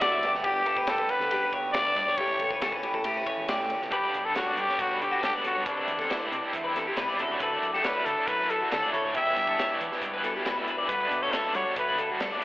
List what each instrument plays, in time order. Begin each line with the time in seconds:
Already playing: clean electric guitar D3 A3 D4
0.01 fingered electric bass A1, clean electric guitar F#4 D5, trumpet D5, snare, ride
0.11 clean electric guitar E5
0.22 fingered electric bass G1, clean electric guitar G2 D3 B3 D4 G4 D5, snare, ride
0.33 fingered electric bass D2, clean electric guitar C#5, snare
0.44 fingered electric bass G1, clean electric guitar D3 G4, trumpet G4, kick, ride
0.65 fingered electric bass G1, clean electric guitar D4 A4, ride
0.77 clean electric guitar B4, kick
0.87 clean electric guitar G4 A4, trumpet A4, snare, ride
0.98 clean electric guitar B4, kick
1.09 clean electric guitar B3, trumpet B4, ride
1.19 fingered electric bass D2, clean electric guitar A4, snare
1.31 fingered electric bass F#1, clean electric guitar D4 G4, ride
1.43 clean electric guitar B4
1.53 fingered electric bass B1, clean electric guitar G4 C#5, kick, ride
1.72 fingered electric bass D2, clean electric guitar D4 D5, trumpet D5, snare, ride
1.86 clean electric guitar E5
1.96 fingered electric bass G2, clean electric guitar G2 D5, snare, ride
2.07 fingered electric bass B1, clean electric guitar C#5, snare
2.17 fingered electric bass A1, clean electric guitar A2 E3 A3 C#4 G4, trumpet C#5, kick, ride
2.39 fingered electric bass C#2, clean electric guitar E3 A4, ride
2.51 clean electric guitar B4, kick
2.62 clean electric guitar C#4 A4, snare, ride
2.72 clean electric guitar B4, kick
2.83 clean electric guitar G4, ride
2.94 fingered electric bass A1, clean electric guitar A4, kick
3.04 fingered electric bass A2, clean electric guitar A3 G4, ride
3.17 clean electric guitar B4
3.26 clean electric guitar C#4 C#5, kick, ride
3.37 fingered electric bass E2
3.48 fingered electric bass A2, clean electric guitar G4 D5, snare, ride
3.60 clean electric guitar E5
3.70 fingered electric bass E2, clean electric guitar C#4 D5, ride
3.82 fingered electric bass D2, clean electric guitar C#5, snare
3.91 fingered electric bass G1, overdriven electric guitar G2 D3 G3 B3 D4, clean electric guitar G2 D4 B4, trumpet G4, kick, closed hi-hat
4.05 clean electric guitar D5
4.14 fingered electric bass B1, closed hi-hat
4.25 trumpet A4, clean electric guitar A4
4.36 overdriven electric guitar D3 G3 B3 D4, clean electric guitar D3 C#5, trumpet F#4, snare, closed hi-hat
4.46 clean electric guitar D5
4.57 fingered electric bass G2, overdriven electric guitar G3 B3 D4, clean electric guitar D4, trumpet G4, closed hi-hat
4.68 clean electric guitar C#5, snare
4.78 fingered electric bass B1, overdriven electric guitar G2 D3 G3 B3 D4, trumpet F#4, kick, closed hi-hat
4.91 clean electric guitar B4
5.01 clean electric guitar D3 A4, overdriven electric guitar G3 B3 D4, trumpet G4, closed hi-hat
5.12 clean electric guitar F#4
5.22 fingered electric bass G2, overdriven electric guitar D3 G3 B3 D4, clean electric guitar B3 A4, trumpet G4, snare, closed hi-hat
5.34 clean electric guitar D5
5.44 fingered electric bass G1, clean electric guitar C#4 A4, trumpet F#4, closed hi-hat
5.56 fingered electric bass G2, clean electric guitar C#5
5.65 fingered electric bass C2, overdriven electric guitar C3 G3 C4 E4, clean electric guitar C3 D4 B4, trumpet D4, kick, closed hi-hat
5.77 clean electric guitar D5
5.88 fingered electric bass E2, kick, closed hi-hat
5.99 clean electric guitar A4, kick, snare
6.10 overdriven electric guitar C3 G3 C4 E4, clean electric guitar E3 C5, snare, closed hi-hat
6.21 clean electric guitar D5
6.32 fingered electric bass C3, overdriven electric guitar G3 C4 E4, clean electric guitar D4, closed hi-hat
6.42 clean electric guitar C5
6.53 fingered electric bass E2, overdriven electric guitar C3 G3 C4 E4, clean electric guitar A3, kick, closed hi-hat
6.64 clean electric guitar B4
6.74 clean electric guitar C3 A4, overdriven electric guitar G3 C4 E4, snare, closed hi-hat
6.87 clean electric guitar G4
6.95 overdriven electric guitar C3 G3 C4 E4, fingered electric bass C3, clean electric guitar G3 B4, snare, closed hi-hat
7.08 clean electric guitar D5, snare
7.18 fingered electric bass D2, clean electric guitar D2 D3 F#3 A4, overdriven electric guitar D3 F#3 A3 D4, closed hi-hat
7.22 clean electric guitar C#4 E4
7.30 fingered electric bass D2, clean electric guitar C#5
7.40 fingered electric bass D2, overdriven electric guitar D3 F#3 A3 D4, trumpet A4, clean electric guitar B4, kick, closed hi-hat
7.52 clean electric guitar D5
7.62 fingered electric bass F#2, clean electric guitar D3, closed hi-hat
7.73 trumpet G4, clean electric guitar A4, snare
7.83 overdriven electric guitar D3 F#3 A3 D4, clean electric guitar D4 C#5, trumpet B4, snare, closed hi-hat
7.95 clean electric guitar E4 D5
8.05 fingered electric bass D3, overdriven electric guitar A3 D4, trumpet A4, closed hi-hat
8.09 overdriven electric guitar F#3
8.18 clean electric guitar C#5
8.27 fingered electric bass F#2, clean electric guitar A2, overdriven electric guitar D3 F#3 A3 D4, trumpet B4, kick, closed hi-hat
8.40 clean electric guitar B4
8.49 overdriven electric guitar F#3 A3 D4, trumpet A4, clean electric guitar A4, closed hi-hat
8.62 clean electric guitar F#4
8.70 overdriven electric guitar D3 F#3 A3 D4, fingered electric bass D3, clean electric guitar C#4 A4, trumpet A4, snare, closed hi-hat
8.83 clean electric guitar D5
8.91 clean electric guitar D2 E4 A4, fingered electric bass D2, trumpet C#5, closed hi-hat
9.04 fingered electric bass D2, clean electric guitar C#5
9.13 clean electric guitar E2 G4 B4, fingered electric bass E2, overdriven electric guitar E3 G3 B3 E4, trumpet E5, kick, closed hi-hat
9.27 clean electric guitar D5
9.37 fingered electric bass G2, clean electric guitar D4, kick, closed hi-hat
9.47 clean electric guitar A4, kick
9.57 overdriven electric guitar E3 G3 B3 E4, clean electric guitar E3 C#5, snare, closed hi-hat
9.70 clean electric guitar D5
9.79 fingered electric bass E3, overdriven electric guitar G3 B3 E4, closed hi-hat
9.91 clean electric guitar C#5, snare
10.01 fingered electric bass G2, overdriven electric guitar E3 G3 B3, clean electric guitar D4, kick, closed hi-hat
10.05 overdriven electric guitar E4
10.14 clean electric guitar B4
10.23 clean electric guitar B2 A4, overdriven electric guitar G3 B3 E4, closed hi-hat
10.36 clean electric guitar G4
10.45 fingered electric bass A1, overdriven electric guitar E3 G3 B3 E4, clean electric guitar B4, snare, closed hi-hat
10.57 clean electric guitar E5
10.68 fingered electric bass G1, clean electric guitar D4 B4, closed hi-hat
10.78 clean electric guitar D5
10.88 clean electric guitar G2 D3 A3 F#4 B4, overdriven electric guitar G2 D3 G3 B3, fingered electric bass G2, trumpet B4, kick, closed hi-hat
10.92 overdriven electric guitar D4
11.00 clean electric guitar D5
11.11 fingered electric bass B2, clean electric guitar A3, closed hi-hat
11.22 clean electric guitar A4, trumpet C#5
11.32 overdriven electric guitar D3 G3 B3 D4, clean electric guitar D3 C#5, trumpet A4, snare, closed hi-hat
11.44 clean electric guitar D5
11.54 fingered electric bass G3, overdriven electric guitar G3 B3 D4, clean electric guitar F#4, trumpet C#5, closed hi-hat
11.67 clean electric guitar C#5
11.76 overdriven electric guitar G2 D3 G3 B3 D4, fingered electric bass B2, clean electric guitar A3, trumpet B4, kick, closed hi-hat
11.89 clean electric guitar B4
11.97 clean electric guitar D3 A4, overdriven electric guitar B3 D4, closed hi-hat
12.02 overdriven electric guitar G3
12.11 clean electric guitar F#4
12.20 overdriven electric guitar D3 G3 B3 D4, fingered electric bass G3, clean electric guitar A4, snare, closed hi-hat
12.32 clean electric guitar D5, snare